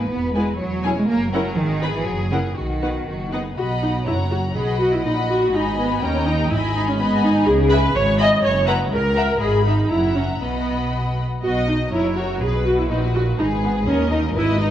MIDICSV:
0, 0, Header, 1, 6, 480
1, 0, Start_track
1, 0, Key_signature, 5, "major"
1, 0, Tempo, 497100
1, 573, Time_signature, 2, 2, 24, 8
1, 3452, Tempo, 485437
1, 9212, Tempo, 505476
1, 11612, Tempo, 487013
1, 14350, End_track
2, 0, Start_track
2, 0, Title_t, "Violin section"
2, 0, Program_c, 0, 48
2, 0, Note_on_c, 0, 71, 56
2, 535, Note_off_c, 0, 71, 0
2, 571, Note_on_c, 0, 73, 61
2, 1037, Note_off_c, 0, 73, 0
2, 1049, Note_on_c, 0, 70, 59
2, 1509, Note_off_c, 0, 70, 0
2, 1520, Note_on_c, 0, 68, 72
2, 2478, Note_off_c, 0, 68, 0
2, 2496, Note_on_c, 0, 66, 51
2, 2925, Note_off_c, 0, 66, 0
2, 2978, Note_on_c, 0, 66, 43
2, 3199, Note_off_c, 0, 66, 0
2, 3213, Note_on_c, 0, 68, 40
2, 3453, Note_off_c, 0, 68, 0
2, 3454, Note_on_c, 0, 83, 51
2, 3903, Note_off_c, 0, 83, 0
2, 3942, Note_on_c, 0, 82, 47
2, 4411, Note_off_c, 0, 82, 0
2, 4445, Note_on_c, 0, 83, 53
2, 4915, Note_off_c, 0, 83, 0
2, 4928, Note_on_c, 0, 83, 52
2, 5383, Note_off_c, 0, 83, 0
2, 5395, Note_on_c, 0, 83, 57
2, 5865, Note_off_c, 0, 83, 0
2, 5886, Note_on_c, 0, 82, 59
2, 6356, Note_on_c, 0, 83, 68
2, 6358, Note_off_c, 0, 82, 0
2, 6809, Note_off_c, 0, 83, 0
2, 6820, Note_on_c, 0, 83, 63
2, 7288, Note_off_c, 0, 83, 0
2, 7531, Note_on_c, 0, 83, 76
2, 7644, Note_off_c, 0, 83, 0
2, 8012, Note_on_c, 0, 83, 72
2, 8124, Note_off_c, 0, 83, 0
2, 8488, Note_on_c, 0, 82, 72
2, 8600, Note_off_c, 0, 82, 0
2, 8969, Note_on_c, 0, 82, 62
2, 9082, Note_off_c, 0, 82, 0
2, 9214, Note_on_c, 0, 83, 60
2, 9654, Note_off_c, 0, 83, 0
2, 9689, Note_on_c, 0, 82, 51
2, 10170, Note_off_c, 0, 82, 0
2, 10176, Note_on_c, 0, 83, 47
2, 10951, Note_off_c, 0, 83, 0
2, 11155, Note_on_c, 0, 75, 55
2, 11587, Note_off_c, 0, 75, 0
2, 11630, Note_on_c, 0, 70, 53
2, 12105, Note_off_c, 0, 70, 0
2, 12113, Note_on_c, 0, 71, 56
2, 12562, Note_off_c, 0, 71, 0
2, 12573, Note_on_c, 0, 71, 55
2, 13046, Note_off_c, 0, 71, 0
2, 13058, Note_on_c, 0, 71, 63
2, 13527, Note_off_c, 0, 71, 0
2, 13538, Note_on_c, 0, 75, 59
2, 13999, Note_off_c, 0, 75, 0
2, 14011, Note_on_c, 0, 75, 68
2, 14350, Note_off_c, 0, 75, 0
2, 14350, End_track
3, 0, Start_track
3, 0, Title_t, "Violin section"
3, 0, Program_c, 1, 48
3, 336, Note_on_c, 1, 80, 50
3, 337, Note_on_c, 1, 71, 48
3, 446, Note_off_c, 1, 80, 0
3, 447, Note_off_c, 1, 71, 0
3, 802, Note_on_c, 1, 80, 55
3, 811, Note_on_c, 1, 68, 56
3, 917, Note_off_c, 1, 80, 0
3, 921, Note_off_c, 1, 68, 0
3, 1283, Note_on_c, 1, 78, 53
3, 1290, Note_on_c, 1, 70, 55
3, 1392, Note_off_c, 1, 78, 0
3, 1396, Note_off_c, 1, 70, 0
3, 1754, Note_on_c, 1, 71, 62
3, 1756, Note_on_c, 1, 83, 57
3, 1865, Note_off_c, 1, 71, 0
3, 1866, Note_off_c, 1, 83, 0
3, 2236, Note_on_c, 1, 78, 44
3, 2239, Note_on_c, 1, 70, 42
3, 2348, Note_off_c, 1, 78, 0
3, 2350, Note_off_c, 1, 70, 0
3, 2720, Note_on_c, 1, 71, 39
3, 2724, Note_on_c, 1, 78, 40
3, 2834, Note_off_c, 1, 71, 0
3, 2835, Note_off_c, 1, 78, 0
3, 3202, Note_on_c, 1, 78, 37
3, 3203, Note_on_c, 1, 71, 38
3, 3318, Note_off_c, 1, 78, 0
3, 3319, Note_off_c, 1, 71, 0
3, 3442, Note_on_c, 1, 75, 51
3, 3445, Note_on_c, 1, 78, 49
3, 3896, Note_off_c, 1, 75, 0
3, 3898, Note_off_c, 1, 78, 0
3, 3933, Note_on_c, 1, 73, 55
3, 3938, Note_on_c, 1, 78, 55
3, 4400, Note_off_c, 1, 78, 0
3, 4410, Note_on_c, 1, 75, 54
3, 4412, Note_on_c, 1, 78, 52
3, 4417, Note_off_c, 1, 73, 0
3, 4876, Note_off_c, 1, 75, 0
3, 4885, Note_off_c, 1, 78, 0
3, 4888, Note_on_c, 1, 75, 59
3, 4897, Note_on_c, 1, 78, 60
3, 5356, Note_off_c, 1, 75, 0
3, 5368, Note_on_c, 1, 75, 58
3, 5370, Note_off_c, 1, 78, 0
3, 5372, Note_on_c, 1, 80, 57
3, 5851, Note_off_c, 1, 75, 0
3, 5853, Note_off_c, 1, 80, 0
3, 5869, Note_on_c, 1, 79, 62
3, 5870, Note_on_c, 1, 75, 62
3, 6340, Note_off_c, 1, 75, 0
3, 6349, Note_off_c, 1, 79, 0
3, 6363, Note_on_c, 1, 75, 64
3, 6365, Note_on_c, 1, 80, 68
3, 6823, Note_off_c, 1, 75, 0
3, 6824, Note_off_c, 1, 80, 0
3, 6840, Note_on_c, 1, 75, 67
3, 6840, Note_on_c, 1, 80, 70
3, 7298, Note_off_c, 1, 75, 0
3, 7298, Note_off_c, 1, 80, 0
3, 7545, Note_on_c, 1, 76, 65
3, 7550, Note_on_c, 1, 80, 67
3, 7652, Note_off_c, 1, 76, 0
3, 7654, Note_off_c, 1, 80, 0
3, 8020, Note_on_c, 1, 76, 65
3, 8028, Note_on_c, 1, 80, 62
3, 8128, Note_off_c, 1, 76, 0
3, 8133, Note_off_c, 1, 80, 0
3, 8482, Note_on_c, 1, 78, 67
3, 8483, Note_on_c, 1, 76, 64
3, 8596, Note_off_c, 1, 78, 0
3, 8597, Note_off_c, 1, 76, 0
3, 8972, Note_on_c, 1, 78, 59
3, 8980, Note_on_c, 1, 76, 59
3, 9084, Note_off_c, 1, 78, 0
3, 9088, Note_off_c, 1, 76, 0
3, 9213, Note_on_c, 1, 75, 58
3, 9289, Note_off_c, 1, 75, 0
3, 9469, Note_on_c, 1, 76, 56
3, 9545, Note_off_c, 1, 76, 0
3, 9701, Note_on_c, 1, 78, 59
3, 9707, Note_on_c, 1, 76, 58
3, 10167, Note_off_c, 1, 78, 0
3, 10179, Note_off_c, 1, 76, 0
3, 10182, Note_on_c, 1, 75, 53
3, 10191, Note_on_c, 1, 78, 50
3, 10942, Note_off_c, 1, 78, 0
3, 10954, Note_off_c, 1, 75, 0
3, 11140, Note_on_c, 1, 75, 71
3, 11578, Note_off_c, 1, 75, 0
3, 11617, Note_on_c, 1, 73, 67
3, 12091, Note_on_c, 1, 71, 66
3, 12098, Note_off_c, 1, 73, 0
3, 12565, Note_off_c, 1, 71, 0
3, 12574, Note_on_c, 1, 66, 63
3, 13046, Note_off_c, 1, 66, 0
3, 13066, Note_on_c, 1, 68, 70
3, 13531, Note_off_c, 1, 68, 0
3, 13544, Note_on_c, 1, 70, 71
3, 14018, Note_off_c, 1, 70, 0
3, 14020, Note_on_c, 1, 71, 77
3, 14350, Note_off_c, 1, 71, 0
3, 14350, End_track
4, 0, Start_track
4, 0, Title_t, "Viola section"
4, 0, Program_c, 2, 48
4, 342, Note_on_c, 2, 64, 53
4, 344, Note_on_c, 2, 59, 53
4, 449, Note_off_c, 2, 64, 0
4, 451, Note_off_c, 2, 59, 0
4, 821, Note_on_c, 2, 64, 52
4, 824, Note_on_c, 2, 61, 55
4, 926, Note_off_c, 2, 64, 0
4, 928, Note_off_c, 2, 61, 0
4, 1290, Note_on_c, 2, 64, 66
4, 1292, Note_on_c, 2, 61, 67
4, 1396, Note_off_c, 2, 64, 0
4, 1397, Note_off_c, 2, 61, 0
4, 1754, Note_on_c, 2, 63, 56
4, 1759, Note_on_c, 2, 59, 56
4, 1865, Note_off_c, 2, 63, 0
4, 1867, Note_off_c, 2, 59, 0
4, 2231, Note_on_c, 2, 61, 52
4, 2233, Note_on_c, 2, 64, 50
4, 2345, Note_off_c, 2, 61, 0
4, 2346, Note_off_c, 2, 64, 0
4, 2722, Note_on_c, 2, 63, 40
4, 2724, Note_on_c, 2, 59, 36
4, 2835, Note_off_c, 2, 63, 0
4, 2836, Note_off_c, 2, 59, 0
4, 3208, Note_on_c, 2, 59, 41
4, 3211, Note_on_c, 2, 63, 41
4, 3321, Note_off_c, 2, 59, 0
4, 3323, Note_off_c, 2, 63, 0
4, 3445, Note_on_c, 2, 66, 70
4, 3524, Note_off_c, 2, 66, 0
4, 3691, Note_on_c, 2, 63, 61
4, 3770, Note_off_c, 2, 63, 0
4, 3931, Note_on_c, 2, 64, 74
4, 4010, Note_off_c, 2, 64, 0
4, 4176, Note_on_c, 2, 66, 72
4, 4255, Note_off_c, 2, 66, 0
4, 4415, Note_on_c, 2, 68, 75
4, 4653, Note_off_c, 2, 68, 0
4, 4659, Note_on_c, 2, 66, 73
4, 4778, Note_off_c, 2, 66, 0
4, 4793, Note_on_c, 2, 64, 64
4, 4904, Note_on_c, 2, 63, 73
4, 4908, Note_off_c, 2, 64, 0
4, 4983, Note_off_c, 2, 63, 0
4, 5146, Note_on_c, 2, 66, 82
4, 5379, Note_off_c, 2, 66, 0
4, 5395, Note_on_c, 2, 63, 76
4, 5630, Note_off_c, 2, 63, 0
4, 5633, Note_on_c, 2, 59, 74
4, 5868, Note_off_c, 2, 59, 0
4, 5877, Note_on_c, 2, 61, 83
4, 6109, Note_on_c, 2, 63, 88
4, 6114, Note_off_c, 2, 61, 0
4, 6348, Note_off_c, 2, 63, 0
4, 6351, Note_on_c, 2, 64, 80
4, 6588, Note_off_c, 2, 64, 0
4, 6590, Note_on_c, 2, 63, 77
4, 6705, Note_off_c, 2, 63, 0
4, 6718, Note_on_c, 2, 61, 78
4, 6832, Note_off_c, 2, 61, 0
4, 6832, Note_on_c, 2, 59, 91
4, 7066, Note_off_c, 2, 59, 0
4, 7072, Note_on_c, 2, 63, 91
4, 7304, Note_off_c, 2, 63, 0
4, 7306, Note_on_c, 2, 68, 93
4, 7532, Note_on_c, 2, 71, 94
4, 7540, Note_off_c, 2, 68, 0
4, 7772, Note_off_c, 2, 71, 0
4, 7775, Note_on_c, 2, 73, 98
4, 8014, Note_off_c, 2, 73, 0
4, 8018, Note_on_c, 2, 75, 105
4, 8250, Note_off_c, 2, 75, 0
4, 8262, Note_on_c, 2, 73, 91
4, 8490, Note_off_c, 2, 73, 0
4, 8494, Note_on_c, 2, 71, 84
4, 8574, Note_off_c, 2, 71, 0
4, 8730, Note_on_c, 2, 70, 94
4, 9204, Note_off_c, 2, 70, 0
4, 9210, Note_on_c, 2, 68, 92
4, 9443, Note_off_c, 2, 68, 0
4, 9452, Note_on_c, 2, 63, 74
4, 9683, Note_off_c, 2, 63, 0
4, 9685, Note_on_c, 2, 64, 75
4, 9924, Note_on_c, 2, 61, 72
4, 9925, Note_off_c, 2, 64, 0
4, 10000, Note_off_c, 2, 61, 0
4, 10163, Note_on_c, 2, 59, 66
4, 10884, Note_off_c, 2, 59, 0
4, 11143, Note_on_c, 2, 66, 81
4, 11362, Note_off_c, 2, 66, 0
4, 11373, Note_on_c, 2, 63, 66
4, 11449, Note_off_c, 2, 63, 0
4, 11605, Note_on_c, 2, 64, 81
4, 11846, Note_off_c, 2, 64, 0
4, 11848, Note_on_c, 2, 66, 84
4, 12086, Note_on_c, 2, 68, 84
4, 12093, Note_off_c, 2, 66, 0
4, 12332, Note_off_c, 2, 68, 0
4, 12333, Note_on_c, 2, 66, 74
4, 12452, Note_off_c, 2, 66, 0
4, 12457, Note_on_c, 2, 64, 74
4, 12566, Note_on_c, 2, 63, 78
4, 12577, Note_off_c, 2, 64, 0
4, 12645, Note_off_c, 2, 63, 0
4, 12808, Note_on_c, 2, 66, 88
4, 12887, Note_off_c, 2, 66, 0
4, 13049, Note_on_c, 2, 63, 82
4, 13128, Note_off_c, 2, 63, 0
4, 13294, Note_on_c, 2, 59, 69
4, 13373, Note_off_c, 2, 59, 0
4, 13521, Note_on_c, 2, 61, 87
4, 13762, Note_off_c, 2, 61, 0
4, 13762, Note_on_c, 2, 63, 87
4, 13841, Note_off_c, 2, 63, 0
4, 14013, Note_on_c, 2, 64, 91
4, 14248, Note_off_c, 2, 64, 0
4, 14257, Note_on_c, 2, 63, 85
4, 14350, Note_off_c, 2, 63, 0
4, 14350, End_track
5, 0, Start_track
5, 0, Title_t, "Cello section"
5, 0, Program_c, 3, 48
5, 92, Note_on_c, 3, 59, 69
5, 328, Note_off_c, 3, 59, 0
5, 332, Note_on_c, 3, 56, 71
5, 567, Note_off_c, 3, 56, 0
5, 569, Note_on_c, 3, 54, 73
5, 921, Note_off_c, 3, 54, 0
5, 943, Note_on_c, 3, 56, 72
5, 1052, Note_off_c, 3, 56, 0
5, 1054, Note_on_c, 3, 58, 78
5, 1280, Note_on_c, 3, 54, 80
5, 1282, Note_off_c, 3, 58, 0
5, 1512, Note_off_c, 3, 54, 0
5, 1517, Note_on_c, 3, 51, 78
5, 1872, Note_off_c, 3, 51, 0
5, 1879, Note_on_c, 3, 52, 70
5, 1986, Note_on_c, 3, 54, 71
5, 1993, Note_off_c, 3, 52, 0
5, 2230, Note_on_c, 3, 49, 61
5, 2231, Note_off_c, 3, 54, 0
5, 2308, Note_off_c, 3, 49, 0
5, 2472, Note_on_c, 3, 51, 53
5, 3191, Note_off_c, 3, 51, 0
5, 3447, Note_on_c, 3, 47, 50
5, 3899, Note_off_c, 3, 47, 0
5, 3929, Note_on_c, 3, 42, 49
5, 4414, Note_on_c, 3, 47, 53
5, 4415, Note_off_c, 3, 42, 0
5, 4895, Note_on_c, 3, 46, 50
5, 4899, Note_off_c, 3, 47, 0
5, 5378, Note_on_c, 3, 44, 57
5, 5379, Note_off_c, 3, 46, 0
5, 5856, Note_off_c, 3, 44, 0
5, 5862, Note_on_c, 3, 39, 65
5, 6336, Note_off_c, 3, 39, 0
5, 6344, Note_on_c, 3, 44, 66
5, 7297, Note_on_c, 3, 49, 80
5, 7298, Note_off_c, 3, 44, 0
5, 7694, Note_off_c, 3, 49, 0
5, 7769, Note_on_c, 3, 44, 71
5, 8169, Note_off_c, 3, 44, 0
5, 8243, Note_on_c, 3, 42, 80
5, 8644, Note_off_c, 3, 42, 0
5, 8722, Note_on_c, 3, 37, 69
5, 9128, Note_off_c, 3, 37, 0
5, 9208, Note_on_c, 3, 44, 66
5, 9651, Note_off_c, 3, 44, 0
5, 9690, Note_on_c, 3, 42, 59
5, 10171, Note_off_c, 3, 42, 0
5, 10177, Note_on_c, 3, 47, 50
5, 10936, Note_off_c, 3, 47, 0
5, 11147, Note_on_c, 3, 47, 54
5, 11582, Note_off_c, 3, 47, 0
5, 11622, Note_on_c, 3, 42, 54
5, 12098, Note_on_c, 3, 47, 60
5, 12101, Note_off_c, 3, 42, 0
5, 12564, Note_on_c, 3, 46, 57
5, 12578, Note_off_c, 3, 47, 0
5, 13044, Note_on_c, 3, 44, 63
5, 13050, Note_off_c, 3, 46, 0
5, 13519, Note_off_c, 3, 44, 0
5, 13526, Note_on_c, 3, 39, 64
5, 14002, Note_on_c, 3, 44, 69
5, 14009, Note_off_c, 3, 39, 0
5, 14350, Note_off_c, 3, 44, 0
5, 14350, End_track
6, 0, Start_track
6, 0, Title_t, "Double bass section"
6, 0, Program_c, 4, 48
6, 101, Note_on_c, 4, 28, 50
6, 497, Note_off_c, 4, 28, 0
6, 590, Note_on_c, 4, 28, 52
6, 978, Note_off_c, 4, 28, 0
6, 1057, Note_on_c, 4, 30, 58
6, 1444, Note_off_c, 4, 30, 0
6, 1530, Note_on_c, 4, 32, 63
6, 1918, Note_off_c, 4, 32, 0
6, 2005, Note_on_c, 4, 30, 61
6, 2402, Note_off_c, 4, 30, 0
6, 2486, Note_on_c, 4, 35, 46
6, 2888, Note_off_c, 4, 35, 0
6, 2966, Note_on_c, 4, 30, 41
6, 3371, Note_off_c, 4, 30, 0
6, 3462, Note_on_c, 4, 35, 51
6, 3907, Note_off_c, 4, 35, 0
6, 3948, Note_on_c, 4, 30, 55
6, 4424, Note_off_c, 4, 30, 0
6, 4431, Note_on_c, 4, 35, 51
6, 4908, Note_off_c, 4, 35, 0
6, 4919, Note_on_c, 4, 34, 53
6, 5391, Note_off_c, 4, 34, 0
6, 5400, Note_on_c, 4, 32, 53
6, 5867, Note_off_c, 4, 32, 0
6, 5881, Note_on_c, 4, 39, 65
6, 6345, Note_off_c, 4, 39, 0
6, 6360, Note_on_c, 4, 32, 66
6, 7306, Note_off_c, 4, 32, 0
6, 7312, Note_on_c, 4, 37, 73
6, 7701, Note_off_c, 4, 37, 0
6, 7771, Note_on_c, 4, 32, 73
6, 8171, Note_off_c, 4, 32, 0
6, 8252, Note_on_c, 4, 30, 76
6, 8649, Note_off_c, 4, 30, 0
6, 8727, Note_on_c, 4, 37, 69
6, 9131, Note_off_c, 4, 37, 0
6, 9220, Note_on_c, 4, 32, 59
6, 9658, Note_off_c, 4, 32, 0
6, 9694, Note_on_c, 4, 30, 57
6, 10164, Note_on_c, 4, 35, 45
6, 10173, Note_off_c, 4, 30, 0
6, 10929, Note_off_c, 4, 35, 0
6, 11149, Note_on_c, 4, 35, 53
6, 11584, Note_off_c, 4, 35, 0
6, 11619, Note_on_c, 4, 30, 59
6, 12100, Note_off_c, 4, 30, 0
6, 12105, Note_on_c, 4, 35, 61
6, 12581, Note_off_c, 4, 35, 0
6, 12585, Note_on_c, 4, 34, 54
6, 13053, Note_on_c, 4, 32, 62
6, 13061, Note_off_c, 4, 34, 0
6, 13524, Note_off_c, 4, 32, 0
6, 13535, Note_on_c, 4, 39, 68
6, 14014, Note_off_c, 4, 39, 0
6, 14019, Note_on_c, 4, 32, 65
6, 14350, Note_off_c, 4, 32, 0
6, 14350, End_track
0, 0, End_of_file